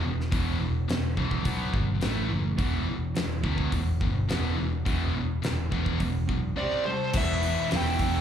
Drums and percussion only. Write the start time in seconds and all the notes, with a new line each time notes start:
0.20 snare
0.32 kick, open hi-hat
0.89 snare, open hi-hat
1.17 kick
1.31 kick
1.45 kick, open hi-hat
1.74 kick
2.01 snare, open hi-hat
2.58 kick, open hi-hat
3.15 snare, open hi-hat
3.44 kick
3.58 kick
3.72 kick, open hi-hat
4.01 kick
4.29 snare, open hi-hat
4.86 kick, open hi-hat
5.43 snare, open hi-hat
5.72 kick
5.86 kick
6.00 kick, open hi-hat
6.29 kick
7.13 kick, crash
7.43 open hi-hat
7.71 snare, open hi-hat
7.99 kick, open hi-hat